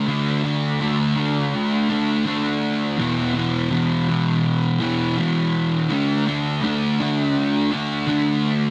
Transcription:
0, 0, Header, 1, 2, 480
1, 0, Start_track
1, 0, Tempo, 727273
1, 49, Time_signature, 4, 2, 24, 8
1, 5744, End_track
2, 0, Start_track
2, 0, Title_t, "Distorted electric guitar"
2, 0, Program_c, 0, 30
2, 45, Note_on_c, 0, 50, 88
2, 55, Note_on_c, 0, 57, 85
2, 63, Note_on_c, 0, 62, 88
2, 279, Note_off_c, 0, 62, 0
2, 287, Note_on_c, 0, 62, 75
2, 294, Note_off_c, 0, 57, 0
2, 302, Note_on_c, 0, 57, 64
2, 518, Note_off_c, 0, 50, 0
2, 525, Note_off_c, 0, 57, 0
2, 526, Note_on_c, 0, 50, 69
2, 533, Note_off_c, 0, 62, 0
2, 533, Note_on_c, 0, 57, 77
2, 541, Note_on_c, 0, 62, 68
2, 754, Note_off_c, 0, 62, 0
2, 762, Note_on_c, 0, 62, 62
2, 773, Note_off_c, 0, 57, 0
2, 781, Note_on_c, 0, 57, 47
2, 1008, Note_off_c, 0, 50, 0
2, 1238, Note_off_c, 0, 62, 0
2, 1246, Note_on_c, 0, 62, 70
2, 1253, Note_off_c, 0, 57, 0
2, 1261, Note_on_c, 0, 57, 61
2, 1482, Note_on_c, 0, 50, 70
2, 1484, Note_off_c, 0, 57, 0
2, 1491, Note_off_c, 0, 62, 0
2, 1492, Note_on_c, 0, 57, 76
2, 1499, Note_on_c, 0, 62, 79
2, 1952, Note_off_c, 0, 50, 0
2, 1957, Note_off_c, 0, 57, 0
2, 1960, Note_off_c, 0, 62, 0
2, 1963, Note_on_c, 0, 40, 95
2, 1975, Note_on_c, 0, 47, 95
2, 1977, Note_on_c, 0, 52, 105
2, 2206, Note_off_c, 0, 52, 0
2, 2208, Note_on_c, 0, 52, 71
2, 2218, Note_off_c, 0, 47, 0
2, 2226, Note_on_c, 0, 47, 56
2, 2438, Note_off_c, 0, 40, 0
2, 2446, Note_on_c, 0, 40, 64
2, 2447, Note_off_c, 0, 47, 0
2, 2455, Note_on_c, 0, 47, 77
2, 2459, Note_off_c, 0, 52, 0
2, 2462, Note_on_c, 0, 52, 75
2, 2688, Note_off_c, 0, 52, 0
2, 2691, Note_on_c, 0, 52, 63
2, 2698, Note_off_c, 0, 47, 0
2, 2706, Note_on_c, 0, 47, 54
2, 2929, Note_off_c, 0, 40, 0
2, 3163, Note_off_c, 0, 52, 0
2, 3166, Note_on_c, 0, 52, 76
2, 3177, Note_off_c, 0, 47, 0
2, 3185, Note_on_c, 0, 47, 53
2, 3410, Note_off_c, 0, 47, 0
2, 3410, Note_on_c, 0, 40, 75
2, 3418, Note_on_c, 0, 47, 72
2, 3423, Note_off_c, 0, 52, 0
2, 3426, Note_on_c, 0, 52, 75
2, 3877, Note_off_c, 0, 40, 0
2, 3881, Note_off_c, 0, 47, 0
2, 3893, Note_on_c, 0, 50, 87
2, 3900, Note_off_c, 0, 52, 0
2, 3903, Note_on_c, 0, 57, 99
2, 3907, Note_on_c, 0, 62, 99
2, 4130, Note_off_c, 0, 62, 0
2, 4133, Note_on_c, 0, 62, 68
2, 4141, Note_off_c, 0, 57, 0
2, 4149, Note_on_c, 0, 57, 59
2, 4359, Note_off_c, 0, 50, 0
2, 4366, Note_on_c, 0, 50, 64
2, 4371, Note_off_c, 0, 57, 0
2, 4379, Note_on_c, 0, 57, 72
2, 4384, Note_off_c, 0, 62, 0
2, 4386, Note_on_c, 0, 62, 79
2, 4614, Note_off_c, 0, 62, 0
2, 4617, Note_on_c, 0, 62, 64
2, 4624, Note_off_c, 0, 57, 0
2, 4632, Note_on_c, 0, 57, 56
2, 4849, Note_off_c, 0, 50, 0
2, 5086, Note_off_c, 0, 62, 0
2, 5089, Note_on_c, 0, 62, 67
2, 5099, Note_off_c, 0, 57, 0
2, 5107, Note_on_c, 0, 57, 57
2, 5322, Note_on_c, 0, 50, 77
2, 5324, Note_off_c, 0, 57, 0
2, 5332, Note_on_c, 0, 57, 71
2, 5334, Note_off_c, 0, 62, 0
2, 5337, Note_on_c, 0, 62, 77
2, 5744, Note_off_c, 0, 50, 0
2, 5744, Note_off_c, 0, 57, 0
2, 5744, Note_off_c, 0, 62, 0
2, 5744, End_track
0, 0, End_of_file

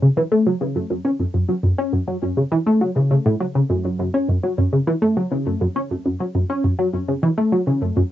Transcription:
0, 0, Header, 1, 2, 480
1, 0, Start_track
1, 0, Key_signature, 3, "minor"
1, 0, Tempo, 588235
1, 1338, Time_signature, 4, 2, 24, 8
1, 6624, End_track
2, 0, Start_track
2, 0, Title_t, "Synth arpeggio sound"
2, 0, Program_c, 0, 84
2, 18, Note_on_c, 0, 49, 73
2, 64, Note_off_c, 0, 49, 0
2, 139, Note_on_c, 0, 52, 99
2, 184, Note_off_c, 0, 52, 0
2, 258, Note_on_c, 0, 57, 94
2, 372, Note_off_c, 0, 57, 0
2, 380, Note_on_c, 0, 54, 80
2, 456, Note_off_c, 0, 54, 0
2, 498, Note_on_c, 0, 49, 73
2, 612, Note_off_c, 0, 49, 0
2, 619, Note_on_c, 0, 42, 77
2, 695, Note_off_c, 0, 42, 0
2, 736, Note_on_c, 0, 42, 95
2, 783, Note_off_c, 0, 42, 0
2, 854, Note_on_c, 0, 61, 80
2, 902, Note_off_c, 0, 61, 0
2, 976, Note_on_c, 0, 42, 73
2, 1023, Note_off_c, 0, 42, 0
2, 1094, Note_on_c, 0, 42, 76
2, 1173, Note_off_c, 0, 42, 0
2, 1213, Note_on_c, 0, 54, 69
2, 1261, Note_off_c, 0, 54, 0
2, 1332, Note_on_c, 0, 42, 79
2, 1412, Note_off_c, 0, 42, 0
2, 1455, Note_on_c, 0, 61, 77
2, 1570, Note_off_c, 0, 61, 0
2, 1574, Note_on_c, 0, 42, 74
2, 1653, Note_off_c, 0, 42, 0
2, 1694, Note_on_c, 0, 54, 68
2, 1773, Note_off_c, 0, 54, 0
2, 1815, Note_on_c, 0, 42, 77
2, 1893, Note_off_c, 0, 42, 0
2, 1936, Note_on_c, 0, 49, 72
2, 1983, Note_off_c, 0, 49, 0
2, 2055, Note_on_c, 0, 52, 98
2, 2103, Note_off_c, 0, 52, 0
2, 2175, Note_on_c, 0, 57, 96
2, 2291, Note_off_c, 0, 57, 0
2, 2295, Note_on_c, 0, 54, 79
2, 2374, Note_off_c, 0, 54, 0
2, 2416, Note_on_c, 0, 49, 70
2, 2527, Note_off_c, 0, 49, 0
2, 2537, Note_on_c, 0, 49, 78
2, 2584, Note_off_c, 0, 49, 0
2, 2659, Note_on_c, 0, 45, 99
2, 2735, Note_off_c, 0, 45, 0
2, 2779, Note_on_c, 0, 54, 80
2, 2824, Note_off_c, 0, 54, 0
2, 2899, Note_on_c, 0, 49, 75
2, 2944, Note_off_c, 0, 49, 0
2, 3017, Note_on_c, 0, 42, 76
2, 3129, Note_off_c, 0, 42, 0
2, 3139, Note_on_c, 0, 42, 68
2, 3248, Note_off_c, 0, 42, 0
2, 3258, Note_on_c, 0, 42, 82
2, 3335, Note_off_c, 0, 42, 0
2, 3377, Note_on_c, 0, 61, 74
2, 3492, Note_off_c, 0, 61, 0
2, 3497, Note_on_c, 0, 42, 75
2, 3575, Note_off_c, 0, 42, 0
2, 3618, Note_on_c, 0, 54, 75
2, 3695, Note_off_c, 0, 54, 0
2, 3738, Note_on_c, 0, 42, 81
2, 3815, Note_off_c, 0, 42, 0
2, 3858, Note_on_c, 0, 49, 71
2, 3904, Note_off_c, 0, 49, 0
2, 3976, Note_on_c, 0, 52, 99
2, 4023, Note_off_c, 0, 52, 0
2, 4096, Note_on_c, 0, 57, 102
2, 4211, Note_off_c, 0, 57, 0
2, 4218, Note_on_c, 0, 54, 83
2, 4295, Note_off_c, 0, 54, 0
2, 4338, Note_on_c, 0, 49, 72
2, 4452, Note_off_c, 0, 49, 0
2, 4461, Note_on_c, 0, 42, 75
2, 4536, Note_off_c, 0, 42, 0
2, 4579, Note_on_c, 0, 42, 96
2, 4625, Note_off_c, 0, 42, 0
2, 4700, Note_on_c, 0, 61, 78
2, 4745, Note_off_c, 0, 61, 0
2, 4822, Note_on_c, 0, 42, 76
2, 4866, Note_off_c, 0, 42, 0
2, 4942, Note_on_c, 0, 42, 72
2, 5017, Note_off_c, 0, 42, 0
2, 5062, Note_on_c, 0, 54, 69
2, 5106, Note_off_c, 0, 54, 0
2, 5180, Note_on_c, 0, 42, 80
2, 5256, Note_off_c, 0, 42, 0
2, 5301, Note_on_c, 0, 61, 79
2, 5413, Note_off_c, 0, 61, 0
2, 5420, Note_on_c, 0, 42, 78
2, 5496, Note_off_c, 0, 42, 0
2, 5537, Note_on_c, 0, 54, 75
2, 5615, Note_off_c, 0, 54, 0
2, 5658, Note_on_c, 0, 42, 78
2, 5735, Note_off_c, 0, 42, 0
2, 5780, Note_on_c, 0, 49, 72
2, 5825, Note_off_c, 0, 49, 0
2, 5899, Note_on_c, 0, 52, 100
2, 5944, Note_off_c, 0, 52, 0
2, 6019, Note_on_c, 0, 57, 96
2, 6132, Note_off_c, 0, 57, 0
2, 6138, Note_on_c, 0, 54, 82
2, 6215, Note_off_c, 0, 54, 0
2, 6259, Note_on_c, 0, 49, 74
2, 6372, Note_off_c, 0, 49, 0
2, 6379, Note_on_c, 0, 42, 76
2, 6455, Note_off_c, 0, 42, 0
2, 6501, Note_on_c, 0, 42, 100
2, 6546, Note_off_c, 0, 42, 0
2, 6624, End_track
0, 0, End_of_file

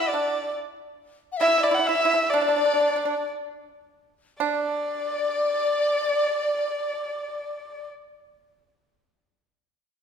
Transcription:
0, 0, Header, 1, 4, 480
1, 0, Start_track
1, 0, Tempo, 841515
1, 311, Time_signature, 2, 2, 24, 8
1, 794, Tempo, 898204
1, 1274, Tempo, 995025
1, 1754, Tempo, 1136364
1, 2234, Tempo, 1202405
1, 4471, End_track
2, 0, Start_track
2, 0, Title_t, "Dizi"
2, 0, Program_c, 0, 73
2, 0, Note_on_c, 0, 76, 78
2, 57, Note_on_c, 0, 74, 64
2, 66, Note_off_c, 0, 76, 0
2, 303, Note_off_c, 0, 74, 0
2, 753, Note_on_c, 0, 78, 76
2, 780, Note_on_c, 0, 76, 94
2, 789, Note_off_c, 0, 78, 0
2, 907, Note_on_c, 0, 74, 80
2, 915, Note_off_c, 0, 76, 0
2, 1023, Note_off_c, 0, 74, 0
2, 1027, Note_on_c, 0, 76, 79
2, 1218, Note_off_c, 0, 76, 0
2, 1244, Note_on_c, 0, 76, 61
2, 1278, Note_on_c, 0, 74, 85
2, 1285, Note_off_c, 0, 76, 0
2, 1756, Note_off_c, 0, 74, 0
2, 2240, Note_on_c, 0, 74, 96
2, 3619, Note_off_c, 0, 74, 0
2, 4471, End_track
3, 0, Start_track
3, 0, Title_t, "Erhu"
3, 0, Program_c, 1, 110
3, 0, Note_on_c, 1, 76, 89
3, 50, Note_on_c, 1, 74, 80
3, 59, Note_off_c, 1, 76, 0
3, 299, Note_off_c, 1, 74, 0
3, 805, Note_on_c, 1, 76, 103
3, 923, Note_on_c, 1, 74, 92
3, 931, Note_off_c, 1, 76, 0
3, 984, Note_on_c, 1, 78, 83
3, 992, Note_off_c, 1, 74, 0
3, 1048, Note_on_c, 1, 76, 104
3, 1056, Note_off_c, 1, 78, 0
3, 1279, Note_on_c, 1, 74, 85
3, 1286, Note_off_c, 1, 76, 0
3, 1756, Note_off_c, 1, 74, 0
3, 2233, Note_on_c, 1, 74, 80
3, 3612, Note_off_c, 1, 74, 0
3, 4471, End_track
4, 0, Start_track
4, 0, Title_t, "Pipa"
4, 0, Program_c, 2, 105
4, 0, Note_on_c, 2, 64, 79
4, 69, Note_off_c, 2, 64, 0
4, 77, Note_on_c, 2, 62, 61
4, 296, Note_off_c, 2, 62, 0
4, 803, Note_on_c, 2, 64, 81
4, 832, Note_off_c, 2, 64, 0
4, 838, Note_on_c, 2, 64, 61
4, 874, Note_off_c, 2, 64, 0
4, 893, Note_on_c, 2, 64, 63
4, 918, Note_off_c, 2, 64, 0
4, 925, Note_on_c, 2, 64, 50
4, 959, Note_off_c, 2, 64, 0
4, 965, Note_on_c, 2, 64, 60
4, 1000, Note_off_c, 2, 64, 0
4, 1007, Note_on_c, 2, 64, 56
4, 1042, Note_off_c, 2, 64, 0
4, 1059, Note_on_c, 2, 64, 55
4, 1086, Note_off_c, 2, 64, 0
4, 1092, Note_on_c, 2, 64, 53
4, 1128, Note_off_c, 2, 64, 0
4, 1146, Note_on_c, 2, 64, 66
4, 1176, Note_off_c, 2, 64, 0
4, 1296, Note_on_c, 2, 62, 80
4, 1323, Note_off_c, 2, 62, 0
4, 1334, Note_on_c, 2, 62, 58
4, 1362, Note_off_c, 2, 62, 0
4, 1367, Note_on_c, 2, 62, 65
4, 1399, Note_off_c, 2, 62, 0
4, 1405, Note_on_c, 2, 62, 49
4, 1438, Note_off_c, 2, 62, 0
4, 1447, Note_on_c, 2, 62, 48
4, 1480, Note_off_c, 2, 62, 0
4, 1489, Note_on_c, 2, 62, 45
4, 1516, Note_off_c, 2, 62, 0
4, 1522, Note_on_c, 2, 62, 49
4, 1559, Note_off_c, 2, 62, 0
4, 1570, Note_on_c, 2, 62, 45
4, 1590, Note_off_c, 2, 62, 0
4, 1596, Note_on_c, 2, 62, 54
4, 1636, Note_off_c, 2, 62, 0
4, 1642, Note_on_c, 2, 62, 55
4, 1685, Note_off_c, 2, 62, 0
4, 2225, Note_on_c, 2, 62, 91
4, 3605, Note_off_c, 2, 62, 0
4, 4471, End_track
0, 0, End_of_file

